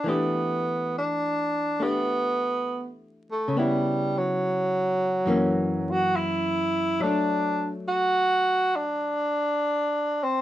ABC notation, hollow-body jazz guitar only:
X:1
M:4/4
L:1/8
Q:"Swing" 1/4=69
K:Em
V:1 name="Hollow-body jazz guitar"
[E,A,DG]4 [A,DG]4 | [^C,B,E]4 [F,,E,^A,^C]4 | [F,A,D]8 |]